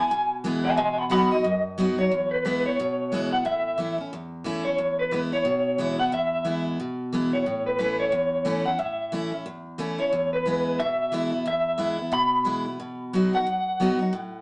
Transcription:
0.00 0.12 B3 medium
0.00 0.11 E4 medium
0.00 0.31 G#5 loud
0.11 0.76 B2 medium
0.44 0.77 E3 medium
0.44 0.77 G#3 loud
0.44 0.78 B3 loud
0.44 0.78 E4 loud
0.65 0.77 E5 medium
0.65 0.77 G#5 medium
0.77 1.42 B2 medium
0.77 0.98 D#5 medium
0.77 0.98 G#5 medium
0.98 1.10 F#5 medium
0.98 1.11 B5 medium
1.10 1.30 F#3 medium
1.10 1.30 B3 loud
1.10 1.31 D#4 loud
1.10 1.30 F#4 loud
1.10 1.30 F#5 medium
1.10 1.31 B5 medium
1.31 1.45 D#4 medium
1.31 1.44 F#4 medium
1.31 1.64 D#5 loud
1.44 2.09 F#2 loud
1.78 1.97 F#3 loud
1.78 1.98 B3 loud
1.78 1.98 D#4 loud
1.78 1.97 F#4 loud
1.98 2.12 D#4 soft
1.98 2.11 F#4 medium
1.98 2.33 C#5 medium
2.31 2.44 B4 medium
2.45 2.64 E3 medium
2.45 2.64 G#3 medium
2.45 2.65 B3 loud
2.45 2.64 E4 loud
2.45 2.64 B4 medium
2.65 2.79 B3 soft
2.65 2.78 E4 medium
2.65 3.28 C#5 loud
2.80 3.43 B2 loud
3.12 3.31 E3 medium
3.12 3.31 G#3 loud
3.12 3.32 B3 medium
3.12 3.30 E4 loud
3.31 3.45 B3 soft
3.31 3.44 E4 medium
3.31 3.46 F#5 medium
3.45 4.09 A2 loud
3.45 3.95 E5 loud
3.78 3.97 E3 medium
3.78 3.98 A3 medium
3.78 3.98 C#4 medium
3.78 3.97 E4 medium
3.98 4.12 C#4 medium
3.98 4.11 E4 medium
4.13 4.76 E2 loud
4.44 4.64 E3 loud
4.44 4.64 A3 medium
4.44 4.65 C#4 loud
4.44 4.64 E4 loud
4.65 4.79 C#4 soft
4.65 4.78 E4 medium
4.65 4.99 C#5 loud
4.78 5.42 E2 loud
4.99 5.11 B4 medium
5.11 5.31 E3 medium
5.11 5.31 G#3 medium
5.11 5.32 B3 medium
5.11 5.31 E4 medium
5.11 5.18 B4 medium
5.32 5.46 B3 medium
5.32 5.45 E4 medium
5.32 5.95 C#5 loud
5.45 6.09 B2 medium
5.78 5.98 E3 loud
5.78 5.98 G#3 medium
5.78 5.98 B3 loud
5.78 5.97 E4 loud
5.98 6.12 B3 medium
5.98 6.11 E4 medium
5.98 6.13 F#5 loud
6.12 6.76 E2 medium
6.12 6.63 E5 loud
6.45 6.77 E3 medium
6.45 6.77 G#3 medium
6.45 6.78 B3 medium
6.45 6.78 E4 loud
6.80 7.43 B2 medium
7.13 7.31 E3 loud
7.13 7.32 G#3 loud
7.13 7.32 B3 loud
7.13 7.31 E4 loud
7.33 7.46 B3 soft
7.33 7.45 E4 medium
7.33 7.66 C#5 medium
7.46 8.10 A2 medium
7.66 7.78 B4 medium
7.79 8.11 E3 medium
7.79 8.11 A3 medium
7.79 8.12 C#4 medium
7.79 8.12 E4 medium
7.79 7.99 B4 medium
8.00 8.68 C#5 loud
8.12 8.76 E2 medium
8.45 8.64 E3 loud
8.45 8.65 A3 loud
8.45 8.65 C#4 loud
8.45 8.64 E4 loud
8.65 8.79 C#4 medium
8.65 8.78 E4 medium
8.65 8.79 F#5 loud
8.79 9.43 A2 medium
8.79 9.32 E5 medium
9.12 9.31 E3 medium
9.12 9.32 A3 medium
9.12 9.32 C#4 loud
9.12 9.30 E4 loud
9.32 9.46 C#4 soft
9.32 9.45 E4 medium
9.46 10.10 E2 loud
9.78 9.98 E3 medium
9.78 9.98 A3 loud
9.78 9.98 C#4 loud
9.78 9.97 E4 loud
9.98 10.12 C#4 soft
9.98 10.11 E4 medium
9.98 10.30 C#5 medium
10.13 10.76 E2 medium
10.33 10.81 B4 medium
10.46 10.78 E3 medium
10.46 10.78 G#3 medium
10.46 10.78 B3 medium
10.46 10.79 E4 loud
10.80 11.43 B2 loud
10.80 11.42 E5 loud
11.12 11.31 E3 medium
11.12 11.32 G#3 loud
11.12 11.32 B3 loud
11.12 11.30 E4 loud
11.32 11.46 B3 soft
11.32 11.45 E4 medium
11.46 12.10 E2 loud
11.46 12.13 E5 loud
11.78 11.98 E3 medium
11.78 11.98 G#3 loud
11.78 11.98 B3 medium
11.78 11.97 E4 loud
11.98 12.13 B3 soft
11.98 12.12 E4 medium
12.12 12.76 B2 medium
12.12 13.34 B5 loud
12.45 12.64 E3 medium
12.45 12.65 G#3 loud
12.45 12.65 B3 loud
12.45 12.64 E4 loud
12.66 12.80 B3 medium
12.66 12.79 E4 medium
12.80 13.44 B2 medium
13.13 13.32 F#3 medium
13.13 13.32 B3 medium
13.13 13.33 D#4 medium
13.13 13.32 F#4 loud
13.33 13.47 D#4 medium
13.33 13.46 F#4 medium
13.33 14.41 F#5 loud
13.47 14.10 F#2 medium
13.80 13.99 F#3 loud
13.80 13.99 B3 loud
13.80 14.00 D#4 medium
13.80 13.98 F#4 loud
13.99 14.13 D#4 medium
13.99 14.12 F#4 medium
14.13 14.41 A2 medium

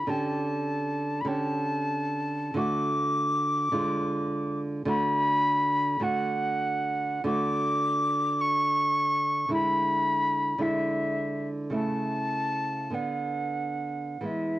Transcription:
0.00 0.11 B5 loud
0.07 1.23 D3 medium
0.07 1.23 C#4 medium
0.07 1.24 G4 medium
0.07 1.22 A5 medium
1.20 1.29 B5 medium
1.25 2.52 D3 medium
1.25 2.53 C#4 medium
1.25 2.53 G4 medium
1.25 2.56 A5 loud
2.54 3.70 D3 medium
2.54 3.71 A3 medium
2.54 3.71 F#4 medium
2.54 4.60 D6 loud
3.72 4.84 D3 medium
3.72 4.84 G#3 medium
3.72 4.85 F4 medium
4.85 5.98 D3 medium
4.85 5.98 A3 medium
4.85 5.99 F#4 medium
4.85 6.04 B5 loud
6.00 7.22 D3 medium
6.00 7.23 A3 medium
6.00 7.23 F#4 medium
6.00 7.24 F#5 loud
7.24 9.47 D3 medium
7.24 9.48 A3 medium
7.24 9.49 F#4 medium
7.24 8.42 D6 loud
8.41 9.52 C#6 loud
9.49 10.56 D3 medium
9.49 10.57 G#3 medium
9.49 10.57 E4 medium
9.53 10.63 B5 loud
10.58 11.69 D3 medium
10.58 11.69 G#3 soft
10.58 11.70 E4 medium
10.58 11.49 E5 medium
11.70 12.88 C#3 medium
11.70 12.89 A3 soft
11.70 12.89 E4 soft
11.75 12.96 A5 loud
12.90 14.19 D3 medium
12.90 14.20 B3 soft
12.90 14.21 D4 soft
12.90 14.27 F#5 medium
14.21 14.59 E3 soft
14.21 14.59 G#3 soft
14.21 14.59 B3 soft
14.25 14.59 E5 medium

